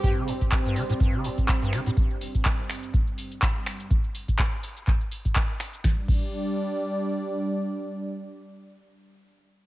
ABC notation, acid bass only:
X:1
M:4/4
L:1/16
Q:"Swing 16ths" 1/4=124
K:Cdor
V:1 name="Acid bass" clef=bass
G,, D, G,, z2 G,, D, A,, G,, D, G,, z2 G,, D, A,, | z16 | z16 | z16 |
z16 |]